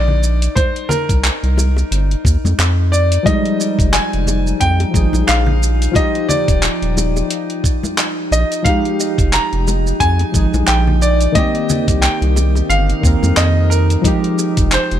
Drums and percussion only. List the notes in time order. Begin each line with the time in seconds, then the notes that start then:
0.08 low conga
0.23 shaker
0.42 closed hi-hat, shaker
0.56 kick, closed hi-hat, high conga, shaker
0.76 closed hi-hat
0.89 low conga, shaker
1.09 kick, closed hi-hat, shaker
1.24 clap, closed hi-hat, shaker
1.44 closed hi-hat
1.57 high bongo, high conga, shaker
1.77 high bongo, shaker
1.92 closed hi-hat, shaker
2.11 closed hi-hat
2.25 kick, shaker
2.45 high conga, shaker
2.60 clap, closed hi-hat, shaker
2.93 shaker
3.12 closed hi-hat, shaker
3.26 kick, closed hi-hat, high conga, shaker
3.45 closed hi-hat
3.60 high bongo, shaker
3.79 kick, closed hi-hat, shaker
3.94 clap, closed hi-hat, shaker
4.13 closed hi-hat
4.27 high bongo, high conga, shaker
4.47 shaker
4.61 kick, closed hi-hat, shaker
4.80 closed hi-hat, high bongo
4.94 kick, shaker
5.13 high conga, shaker
5.29 clap, closed hi-hat, shaker
5.46 low conga
5.63 shaker
5.82 closed hi-hat, shaker
5.94 kick, closed hi-hat, high conga, shaker
6.15 closed hi-hat
6.29 low conga, shaker
6.48 kick, closed hi-hat, shaker
6.63 clap, closed hi-hat, shaker
6.82 closed hi-hat
6.97 high bongo, high conga, shaker
7.17 high bongo, shaker
7.30 closed hi-hat, shaker
7.50 closed hi-hat
7.64 kick, shaker
7.83 high conga, shaker
7.98 clap, closed hi-hat, shaker
8.33 shaker
8.52 closed hi-hat, shaker
8.65 kick, closed hi-hat, high conga, shaker
8.85 closed hi-hat
9.00 high bongo, shaker
9.18 kick, closed hi-hat, shaker
9.33 clap, closed hi-hat, shaker
9.53 closed hi-hat
9.68 high bongo, high conga, shaker
9.87 shaker
10.00 kick, closed hi-hat, shaker
10.19 closed hi-hat, high bongo
10.34 kick, shaker
10.54 high conga, shaker
10.68 clap, closed hi-hat, shaker
10.87 low conga
11.02 shaker
11.21 closed hi-hat, shaker
11.35 kick, closed hi-hat, high conga, shaker
11.55 closed hi-hat
11.70 low conga, shaker
11.88 kick, closed hi-hat, shaker
12.03 clap, closed hi-hat, shaker
12.22 closed hi-hat
12.36 high bongo, high conga, shaker
12.55 high bongo, shaker
12.70 closed hi-hat, shaker
12.90 closed hi-hat
13.03 kick, shaker
13.23 high conga, shaker
13.37 clap, closed hi-hat, shaker
13.72 shaker
13.90 closed hi-hat, shaker
14.04 kick, closed hi-hat, high conga, shaker
14.24 closed hi-hat
14.39 high bongo, shaker
14.57 kick, closed hi-hat, shaker
14.72 clap, closed hi-hat, shaker
14.91 closed hi-hat